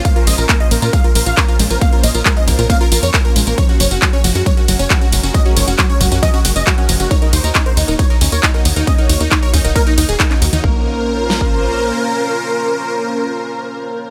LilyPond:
<<
  \new Staff \with { instrumentName = "Supersaw synth" } { \time 4/4 \key bes \minor \tempo 4 = 136 f''16 bes'16 ees''16 bes'16 bes'16 ees''16 bes'16 bes'16 f''16 bes'16 bes'16 f''16 bes'16 bes'16 r16 bes'16 | f''16 bes'16 ees''16 bes'16 bes'16 ees''16 bes'16 bes'16 f''16 bes'16 bes'16 des''16 bes'16 bes'16 r16 bes'16 | des''16 ges'16 des''16 ges'16 ges'16 des''16 ges'16 ges'16 des''16 ges'16 ges'16 des''16 ges'16 ges'16 r16 ges'16 | ees''16 ges'16 des''16 ges'16 ges'16 des''16 ges'16 ges'16 ees''16 ges'16 ges'16 ees''16 ges'16 ges'16 r16 ges'16 |
des''16 ees'16 c''16 ees'16 ees'16 c''16 ees'16 ees'16 des''16 ees'16 ees'16 des''16 ees'16 ees'16 r16 ees'16 | ees''16 ees'16 des''16 ees'16 ees'16 des''16 ees'16 ees'16 bes'16 ees'16 ees'16 aes'16 ees'16 ees'16 r16 ees'16 | bes'1~ | bes'1 | }
  \new Staff \with { instrumentName = "Analog synth pad" } { \time 4/4 \key bes \minor r1 | r1 | r1 | r1 |
r1 | r1 | <bes des' f' c''>1~ | <bes des' f' c''>1 | }
  \new Staff \with { instrumentName = "Synth pluck" } { \time 4/4 \key bes \minor bes16 f'16 aes16 f'16 bes16 f'16 bes16 f'16 aes16 f'16 bes16 f'16 bes16 f'16 aes16 f'16 | bes16 f'16 bes16 f'16 aes16 f'16 bes16 f'16 bes16 f'16 f'16 bes'16 bes'16 bes16 aes16 bes16 | f16 des'16 ges16 des'16 ges16 des'16 f16 des'16 ges16 des'16 ges16 des'16 f16 des'16 ges16 des'16 | ges16 des'16 f16 des'16 ges16 des'16 ges16 des'16 f16 des'16 ges16 des'16 ges16 des'16 f16 des'16 |
ees'16 bes'16 ees'16 bes'16 des'16 bes'16 ees'16 bes'16 ees'16 bes'16 des'16 bes'16 ees'16 bes'16 ees'16 bes'16 | des'16 bes'16 ees'16 bes'16 ees'16 bes'16 des'16 bes'16 ees'16 bes'16 ees'16 ees''16 bes'16 des'16 bes'16 ees16 | bes8 r2. r8 | r1 | }
  \new Staff \with { instrumentName = "Analog synth bass" } { \clef bass \time 4/4 \key bes \minor r8 bes,,16 bes,,16 r8 bes,,16 bes,16 r8 bes,,16 bes,,16 r8 bes,,16 bes,,16 | r8 bes,,16 bes,,16 r8 bes,,16 bes,16 r8 bes,,16 f,16 r8 bes,,16 bes,,16 | r8 ges,,16 ges,,16 r8 ges,,16 ges,16 r8 ges,,16 ges,,16 r8 ges,,16 ges,,16 | r8 ges,,16 ges,,16 r8 ges,,16 ges,16 r8 ges,,16 ges,,16 r8 ges,,16 ges,,16 |
r8 ees,16 ees,16 r8 ees,16 ees,,16 r8 ees,16 ees,16 r8 ees,16 ees,16 | r8 ees,16 ees,16 r8 ees,16 ees,,16 r8 ees,16 ees,,16 r8 ees,16 ees,16 | bes,,2. r4 | r1 | }
  \new DrumStaff \with { instrumentName = "Drums" } \drummode { \time 4/4 <hh bd cymr tamb>16 hh16 <hho cymr tamb>16 <hh tamb>16 <hc hh bd cymr tamb>16 hh16 <hho cymr tamb>16 <hh tamb>16 <hh bd cymr tamb>16 hh16 <hho cymr tamb>16 <hh tamb>16 <hc hh bd cymr tamb>16 hh16 <hho cymr tamb>16 <hh tamb>16 | <hh bd cymr tamb>16 hh16 <hho cymr tamb>16 <hh tamb>16 <hc hh bd cymr tamb>16 hh16 <hho bd cymr tamb>16 <hh tamb>16 <hh bd cymr tamb>16 hh16 <hho cymr tamb>16 <hh tamb>16 <hc hh bd cymr tamb>16 hh16 <hho cymr tamb>16 <hh tamb>16 | <hh bd cymr tamb>16 hh16 <hho cymr tamb>16 <hh tamb>16 <hc hh bd cymr tamb>16 hh16 <hho cymr tamb>16 <hh tamb>16 <hh bd cymr tamb>16 hh16 <hho cymr tamb>16 <hh tamb>16 <hc hh bd cymr tamb>16 hh16 <hho cymr tamb>16 <hh tamb>16 | <hh bd cymr tamb>16 hh16 <hho cymr tamb>16 <hh tamb>16 <hc hh bd cymr tamb>16 hh16 <hho bd cymr tamb>16 <hh tamb>16 <hh bd cymr tamb>16 hh16 <hho cymr tamb>16 <hh tamb>16 <hc hh bd cymr tamb>16 hh16 <hho cymr tamb>16 <hh tamb>16 |
<hh bd cymr tamb>16 hh16 <hho cymr tamb>16 <hh tamb>16 <hc hh bd cymr tamb>16 hh16 <hho cymr tamb>16 <hh tamb>16 <hh bd cymr tamb>16 hh16 <hho cymr tamb>16 <hh tamb>16 <hc hh bd cymr tamb>16 hh16 <hho cymr tamb>16 <hh tamb>16 | <hh bd cymr tamb>16 hh16 <hho cymr tamb>16 <hh tamb>16 <hc hh bd cymr tamb>16 hh16 <hho bd cymr tamb>16 <hh tamb>16 <hh bd cymr tamb>16 hh16 <hho cymr tamb>16 <hh tamb>16 <hc hh bd cymr tamb>16 <hc hh>16 <hho cymr tamb>16 <hh tamb>16 | bd4 r8 sn16 bd16 r4 r4 | r4 r4 r4 r4 | }
>>